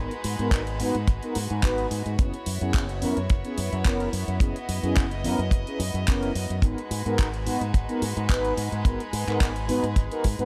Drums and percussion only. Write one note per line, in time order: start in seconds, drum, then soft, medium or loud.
0.11 closed hi-hat soft
0.24 open hi-hat loud
0.39 closed hi-hat soft
0.51 kick loud
0.51 clap loud
0.51 closed hi-hat medium
0.67 closed hi-hat soft
0.80 open hi-hat medium
0.95 closed hi-hat soft
1.08 kick loud
1.08 closed hi-hat medium
1.23 closed hi-hat soft
1.35 open hi-hat loud
1.50 closed hi-hat soft
1.63 kick loud
1.63 clap loud
1.63 closed hi-hat medium
1.78 closed hi-hat soft
1.91 open hi-hat medium
2.06 closed hi-hat soft
2.19 kick loud
2.19 closed hi-hat medium
2.34 closed hi-hat soft
2.46 open hi-hat loud
2.61 closed hi-hat soft
2.74 kick loud
2.74 clap loud
2.74 closed hi-hat medium
2.89 closed hi-hat soft
3.02 open hi-hat medium
3.17 closed hi-hat soft
3.30 kick loud
3.30 closed hi-hat medium
3.45 closed hi-hat soft
3.58 open hi-hat loud
3.73 closed hi-hat soft
3.85 kick loud
3.85 clap loud
3.85 closed hi-hat medium
4.00 closed hi-hat soft
4.13 open hi-hat medium
4.28 closed hi-hat soft
4.40 kick loud
4.40 closed hi-hat medium
4.56 closed hi-hat soft
4.69 open hi-hat loud
4.84 closed hi-hat soft
4.96 kick loud
4.96 clap loud
4.96 closed hi-hat medium
5.11 closed hi-hat soft
5.24 open hi-hat medium
5.39 closed hi-hat soft
5.51 kick loud
5.51 closed hi-hat medium
5.67 closed hi-hat soft
5.80 open hi-hat loud
5.95 closed hi-hat soft
6.08 kick loud
6.08 clap loud
6.08 closed hi-hat medium
6.23 closed hi-hat soft
6.35 open hi-hat medium
6.50 closed hi-hat soft
6.62 kick loud
6.62 closed hi-hat medium
6.78 closed hi-hat soft
6.91 open hi-hat loud
7.06 closed hi-hat soft
7.19 kick loud
7.19 clap loud
7.19 closed hi-hat medium
7.34 closed hi-hat soft
7.46 open hi-hat medium
7.61 closed hi-hat soft
7.74 kick loud
7.74 closed hi-hat medium
7.89 closed hi-hat soft
8.02 open hi-hat loud
8.17 closed hi-hat soft
8.29 kick loud
8.29 clap loud
8.29 closed hi-hat medium
8.45 closed hi-hat soft
8.57 open hi-hat medium
8.72 closed hi-hat soft
8.85 kick loud
8.85 closed hi-hat medium
9.00 closed hi-hat soft
9.13 open hi-hat loud
9.28 clap soft
9.28 closed hi-hat soft
9.41 kick loud
9.41 clap loud
9.41 closed hi-hat medium
9.56 closed hi-hat soft
9.69 open hi-hat medium
9.84 closed hi-hat soft
9.96 kick loud
9.96 closed hi-hat medium
10.12 closed hi-hat soft
10.24 kick medium
10.24 open hi-hat loud
10.39 closed hi-hat soft